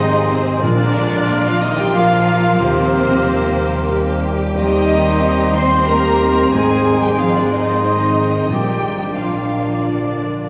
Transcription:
0.00 0.63 G#1 medium
0.00 0.59 G#2 medium
0.00 0.30 D#3 medium
0.00 0.59 G#3 medium
0.00 0.59 G#3 soft
0.00 0.59 C4 medium
0.00 0.31 D#4 medium
0.00 0.37 D#4 medium
0.00 0.64 G4 medium
0.00 0.60 G#4 medium
0.00 0.60 C5 medium
0.00 0.61 C5 medium
0.00 0.30 D#5 medium
0.00 0.30 D#5 loud
0.30 0.63 C3 medium
0.30 0.64 C4 medium
0.30 0.63 C5 medium
0.63 2.61 A#1 medium
0.63 2.57 A#2 medium
0.63 1.58 A#2 medium
0.63 1.45 D3 medium
0.63 2.58 F3 medium
0.63 4.57 A#3 medium
0.63 4.38 A#3 medium
0.63 1.45 D4 medium
0.63 1.94 F4 medium
0.63 2.61 F4 medium
0.63 1.92 A#4 medium
0.63 1.44 D5 medium
0.63 1.44 D5 loud
1.29 2.34 A#3 medium
1.45 1.62 F3 medium
1.45 1.63 F4 medium
1.45 1.62 F5 medium
1.62 1.79 D#3 medium
1.62 1.79 D#4 medium
1.62 1.79 D#5 medium
1.78 1.95 G3 medium
1.78 1.95 G4 medium
1.78 1.95 G5 loud
1.78 1.95 G5 medium
1.94 2.61 F3 medium
1.94 2.64 F4 medium
1.94 2.57 F4 medium
1.94 2.61 F4 medium
1.94 2.59 A#4 medium
1.94 2.57 A#4 medium
1.94 2.60 F5 medium
1.94 2.61 F5 medium
2.59 4.53 D#2 medium
2.59 6.50 D#2 medium
2.59 4.21 C3 medium
2.59 6.50 G3 medium
2.59 4.22 C4 medium
2.59 6.54 G4 medium
2.59 4.30 G4 medium
2.59 4.25 A#4 medium
2.59 4.21 C5 medium
2.59 4.24 C5 medium
3.25 4.30 A#3 medium
3.91 4.52 G4 medium
3.91 4.52 A#4 medium
4.55 6.49 D#2 medium
4.55 5.51 D#3 medium
4.55 8.45 C4 medium
4.55 8.47 C4 medium
4.55 5.52 D#4 medium
4.55 5.85 G4 medium
4.55 5.84 C5 medium
4.55 5.51 D#5 loud
4.55 5.51 D#5 medium
5.20 6.27 C4 medium
5.55 5.88 C4 medium
5.55 5.88 C5 medium
5.55 5.88 C6 loud
5.55 5.88 C6 medium
5.87 6.54 A#3 medium
5.87 6.50 G4 medium
5.87 6.54 G4 medium
5.87 6.50 A#4 medium
5.87 6.54 A#4 medium
5.87 6.52 C5 medium
5.87 6.54 A#5 medium
6.53 8.46 G#1 medium
6.53 8.46 G#2 medium
6.53 7.03 G#3 medium
6.53 8.46 G#3 medium
6.53 8.46 D#4 medium
6.53 8.49 G#4 medium
6.53 7.03 G#4 medium
6.53 8.46 C5 medium
6.53 7.01 G#5 medium
6.53 7.02 G#5 medium
7.02 7.19 G3 medium
7.02 7.19 G4 medium
7.02 7.19 G5 medium
7.19 7.35 F3 medium
7.19 8.24 C4 soft
7.19 7.36 F4 medium
7.19 7.35 F5 medium
7.19 7.36 F5 medium
7.35 7.52 D3 medium
7.35 7.53 D4 medium
7.35 7.51 D5 medium
7.35 7.52 D5 medium
7.52 8.50 D#3 medium
7.52 8.51 D#4 medium
7.52 8.50 D#5 medium
7.84 8.46 G#4 soft
7.84 8.46 C5 soft
8.49 10.49 A#1 medium
8.49 10.48 A#2 medium
8.49 9.46 A#2 medium
8.49 10.49 F3 medium
8.49 9.16 G3 medium
8.49 10.49 A#3 medium
8.49 10.49 D4 medium
8.49 9.12 F4 soft
8.49 9.16 G4 medium
8.49 9.12 D5 medium
8.49 9.15 G5 medium
8.49 9.16 G5 medium
9.15 9.83 F3 medium
9.15 10.25 D4 soft
9.15 9.82 F4 soft
9.15 9.84 F4 medium
9.15 9.82 D5 soft
9.15 9.83 F5 medium
9.15 9.84 F5 medium
9.83 10.49 D3 soft
9.83 10.49 D4 soft
9.83 10.49 F4 soft
9.83 10.49 A#4 soft
9.83 10.49 D5 soft

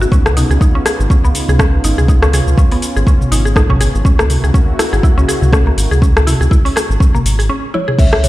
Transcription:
0.00 4.01 C#3 medium
0.00 4.01 B3 medium
0.00 2.05 D#4 medium
0.00 0.11 F#4 medium
0.00 shaker soft
0.12 0.45 C#2 loud
0.12 0.19 C#4 medium
0.12 4.01 F4 medium
0.12 kick loud
0.12 shaker medium
0.26 cross-stick medium
0.26 shaker soft
0.37 0.50 D#4 medium
0.37 open hi-hat medium
0.37 mid tom medium
0.37 shaker medium
0.50 0.58 C#2 medium
0.50 0.60 G#4 medium
0.50 shaker soft
0.61 0.69 D#4 medium
0.61 kick loud
0.61 shaker medium
0.75 0.85 C#4 loud
0.86 0.98 G#4 loud
0.86 cross-stick medium
0.86 open hi-hat medium
0.86 shaker medium
1.00 1.08 G#1 loud
1.00 shaker soft
1.10 1.23 C#4 medium
1.10 kick loud
1.10 shaker soft
1.24 1.32 C#2 medium
1.24 1.34 B3 medium
1.24 shaker soft
1.35 open hi-hat medium
1.35 shaker medium
1.48 1.80 C#2 medium
1.48 1.55 G#4 medium
1.48 mid tom medium
1.48 shaker soft
1.59 1.67 C#4 medium
1.59 kick loud
1.59 cross-stick medium
1.59 shaker medium
1.84 1.94 G#1 medium
1.84 1.97 D#4 medium
1.84 open hi-hat medium
1.84 shaker medium
1.98 2.41 C#2 loud
1.98 2.08 G#4 medium
1.98 mid tom medium
1.98 shaker soft
2.08 4.03 C#4 medium
2.08 2.16 D#4 medium
2.08 kick loud
2.08 shaker medium
2.22 2.32 C#4 loud
2.22 cross-stick medium
2.22 shaker soft
2.33 2.46 G#4 loud
2.33 open hi-hat medium
2.33 mid tom medium
2.33 shaker medium
2.47 2.55 C#2 medium
2.47 shaker soft
2.58 2.71 C#4 medium
2.58 kick loud
2.58 shaker soft
2.72 2.82 B3 medium
2.72 open hi-hat medium
2.82 open hi-hat medium
2.82 shaker medium
2.96 3.04 G#1 medium
2.96 3.02 G#4 medium
2.96 shaker soft
3.07 3.15 C#4 medium
3.07 kick loud
3.07 shaker soft
3.21 mid tom medium
3.21 shaker soft
3.31 3.89 G#1 medium
3.31 3.45 D#4 medium
3.31 open hi-hat medium
3.31 shaker medium
3.45 3.55 G#4 medium
3.45 shaker soft
3.56 3.64 D#4 medium
3.56 kick loud
3.56 cross-stick medium
3.56 shaker soft
3.70 3.80 C#4 loud
3.70 kick medium
3.70 mid tom loud
3.81 3.93 G#4 loud
3.81 open hi-hat medium
3.81 shaker medium
3.95 4.03 G#1 medium
3.95 shaker soft
4.05 4.38 C#2 loud
4.05 7.46 C#3 medium
4.05 7.46 A#3 medium
4.05 4.18 C#4 medium
4.05 7.46 E4 medium
4.05 7.46 F#4 medium
4.05 kick loud
4.05 shaker soft
4.19 4.29 A#3 medium
4.19 cross-stick medium
4.19 shaker soft
4.30 open hi-hat medium
4.30 mid tom medium
4.30 shaker medium
4.44 4.52 C#2 medium
4.44 4.50 G#4 medium
4.44 shaker soft
4.54 4.62 C#4 medium
4.54 kick loud
4.54 shaker medium
4.79 4.92 E4 medium
4.79 cross-stick medium
4.79 open hi-hat medium
4.79 shaker medium
4.93 5.01 G#1 loud
4.93 5.03 G#4 medium
4.93 shaker soft
5.03 5.11 E4 medium
5.03 kick loud
5.03 shaker soft
5.17 5.25 C#2 medium
5.17 5.27 C#4 loud
5.17 shaker soft
5.28 5.41 G#4 loud
5.28 open hi-hat medium
5.28 shaker medium
5.42 5.73 C#2 medium
5.42 mid tom medium
5.42 shaker soft
5.53 5.66 C#4 medium
5.53 kick loud
5.53 cross-stick medium
5.53 shaker medium
5.67 5.77 A#3 medium
5.77 5.88 G#1 medium
5.77 open hi-hat medium
5.77 shaker medium
5.91 6.35 C#2 medium
5.91 5.97 G#4 medium
5.91 mid tom medium
5.91 shaker soft
6.02 6.10 C#4 medium
6.02 kick loud
6.02 shaker soft
6.17 cross-stick medium
6.17 shaker soft
6.27 6.40 E4 medium
6.27 open hi-hat medium
6.27 mid tom medium
6.27 shaker medium
6.41 6.49 C#2 medium
6.41 6.50 G#4 medium
6.41 shaker soft
6.51 6.59 E4 medium
6.51 kick loud
6.51 shaker medium
6.65 6.75 C#4 loud
6.65 open hi-hat medium
6.76 6.88 G#4 loud
6.76 cross-stick medium
6.76 open hi-hat medium
6.76 shaker medium
6.90 6.98 G#1 medium
6.90 shaker soft
7.00 7.13 C#4 medium
7.00 kick loud
7.00 shaker soft
7.15 7.24 A#3 medium
7.15 mid tom medium
7.15 shaker soft
7.25 7.50 G#1 medium
7.25 open hi-hat loud
7.25 shaker medium
7.39 7.45 G#4 medium
7.39 open hi-hat medium
7.39 shaker soft
7.49 7.57 C#4 medium
7.74 7.87 E4 medium
7.74 7.97 C#5 loud
7.74 high tom medium
7.88 7.98 G#4 medium
7.88 mid tom medium
7.99 8.29 C#2 loud
7.99 8.29 E3 medium
7.99 8.29 B3 medium
7.99 8.29 C#4 medium
7.99 8.29 E4 medium
7.99 8.22 E5 loud
7.99 kick loud
7.99 crash loud
7.99 shaker soft
8.13 cross-stick medium
8.24 8.29 C#5 loud
8.24 open hi-hat medium
8.24 mid tom medium
8.24 shaker loud

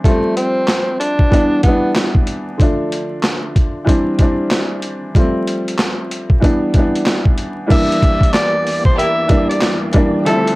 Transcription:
0.04 1.09 F3 medium
0.04 1.09 G3 medium
0.04 0.33 A3 medium
0.04 1.10 A3 medium
0.04 1.11 C4 medium
0.04 kick loud
0.04 closed hi-hat medium
0.36 0.96 C4 medium
0.36 closed hi-hat medium
0.68 snare loud
0.68 clap medium
0.68 closed hi-hat medium
1.00 1.60 D4 medium
1.00 closed hi-hat medium
1.19 kick loud
1.29 1.58 E3 medium
1.29 1.58 G3 medium
1.29 1.59 B3 medium
1.29 1.60 D4 medium
1.29 kick medium
1.29 closed hi-hat medium
1.63 2.44 E3 medium
1.63 2.45 G3 medium
1.63 1.92 B3 medium
1.63 2.45 B3 medium
1.63 kick loud
1.63 closed hi-hat medium
1.68 2.46 D4 medium
1.96 snare loud
1.96 clap loud
1.96 closed hi-hat medium
2.15 kick loud
2.27 closed hi-hat medium
2.58 3.63 D3 medium
2.58 3.64 F3 medium
2.58 3.64 A3 medium
2.58 3.65 D4 medium
2.58 kick loud
2.58 closed hi-hat medium
2.92 closed hi-hat medium
3.23 snare loud
3.23 clap medium
3.23 closed hi-hat medium
3.56 kick medium
3.56 closed hi-hat medium
3.85 4.13 E3 medium
3.85 4.14 G3 medium
3.85 4.14 C4 medium
3.85 4.15 D4 medium
3.85 kick medium
3.89 closed hi-hat medium
4.18 4.98 E3 medium
4.18 4.99 G3 medium
4.18 5.00 C4 medium
4.18 5.00 D4 medium
4.18 kick loud
4.18 closed hi-hat medium
4.51 snare loud
4.51 clap loud
4.51 closed hi-hat medium
4.82 closed hi-hat medium
5.15 6.19 F3 medium
5.15 6.20 G3 medium
5.15 6.20 A3 medium
5.15 6.21 C4 medium
5.15 kick loud
5.15 closed hi-hat medium
5.47 closed hi-hat medium
5.68 closed hi-hat medium
5.79 snare loud
5.79 clap medium
5.79 closed hi-hat loud
6.11 closed hi-hat medium
6.30 kick loud
6.40 6.68 E3 medium
6.40 6.69 G3 medium
6.40 6.70 B3 medium
6.40 6.70 D4 medium
6.40 kick medium
6.44 closed hi-hat medium
6.74 7.55 E3 medium
6.74 7.55 G3 medium
6.74 7.56 B3 medium
6.74 kick loud
6.74 closed hi-hat medium
6.79 7.57 D4 medium
6.96 closed hi-hat soft
7.06 snare loud
7.06 clap loud
7.06 closed hi-hat medium
7.25 kick loud
7.38 closed hi-hat medium
7.66 8.73 E3 medium
7.66 8.73 G3 medium
7.66 8.74 A#3 medium
7.66 8.75 D4 medium
7.66 kick loud
7.66 crash loud
7.71 10.24 E2 medium
7.71 10.24 E3 medium
7.71 10.24 A#3 medium
7.71 10.55 G4 medium
7.71 10.24 D5 medium
7.71 8.31 E5 loud
7.71 closed hi-hat medium
7.92 closed hi-hat medium
8.02 kick medium
8.02 closed hi-hat medium
8.21 kick medium
8.21 closed hi-hat medium
8.34 8.82 D5 medium
8.34 snare loud
8.34 clap loud
8.34 closed hi-hat medium
8.67 open hi-hat medium
8.85 8.97 C5 medium
8.85 kick loud
8.97 9.24 E4 loud
8.97 9.24 G4 loud
8.97 9.24 A#4 loud
8.97 9.46 E5 loud
8.97 closed hi-hat medium
9.27 9.82 E3 medium
9.27 9.83 G3 medium
9.27 9.84 A#3 medium
9.27 9.84 D4 medium
9.27 kick loud
9.27 closed hi-hat medium
9.49 9.78 D5 medium
9.49 closed hi-hat medium
9.61 snare loud
9.61 clap loud
9.61 closed hi-hat medium
9.92 10.20 E3 medium
9.92 10.21 G3 medium
9.92 10.21 A#3 medium
9.92 10.22 D4 loud
9.92 kick loud
9.92 closed hi-hat medium
10.25 10.55 D2 medium
10.25 10.55 D3 medium
10.25 10.55 F3 medium
10.25 10.55 G3 medium
10.25 10.55 A3 medium
10.25 10.55 C4 medium
10.25 10.55 E4 medium
10.25 10.55 A4 loud
10.25 10.55 E5 medium
10.25 closed hi-hat medium
10.47 closed hi-hat medium

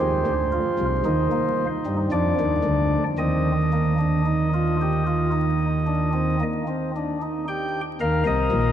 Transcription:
0.00 0.23 D#2 medium
0.00 0.23 D#3 medium
0.00 0.33 G4 medium
0.00 1.67 C5 medium
0.26 0.59 D2 medium
0.26 0.59 D3 medium
0.52 0.85 F4 medium
0.79 1.02 C2 medium
0.79 1.02 C3 medium
1.05 1.28 D#2 medium
1.05 1.28 D#3 medium
1.05 1.97 D#4 medium
1.32 1.65 A#3 medium
1.86 2.09 G2 medium
1.86 2.08 G3 medium
2.12 2.35 F2 medium
2.12 2.35 F3 medium
2.12 3.04 D4 medium
2.12 3.04 D5 medium
2.40 2.62 D#2 medium
2.40 2.62 D#3 medium
2.64 2.98 D2 medium
2.64 2.97 D3 medium
3.18 6.42 D#2 medium
3.18 6.42 D#3 medium
3.18 3.52 C4 medium
3.18 6.43 D#5 medium
3.73 3.95 A#3 medium
3.98 4.22 D4 medium
4.26 4.49 D#4 medium
4.54 4.76 F4 medium
4.81 5.04 G4 medium
5.07 5.30 F4 medium
5.32 5.66 D#4 medium
5.87 6.10 D4 soft
6.13 6.37 C4 medium
6.40 6.64 A#3 medium
6.68 6.91 C4 medium
6.96 7.19 D4 medium
7.22 7.45 D#4 medium
7.48 7.81 G4 medium
7.48 7.81 G5 medium
8.01 8.24 D#2 medium
8.01 8.23 D#3 medium
8.01 8.72 A#4 medium
8.01 8.23 F5 medium
8.26 8.49 C2 medium
8.26 8.49 C3 medium
8.26 8.72 D#5 medium
8.52 8.72 A#1 medium
8.52 8.72 A#2 medium

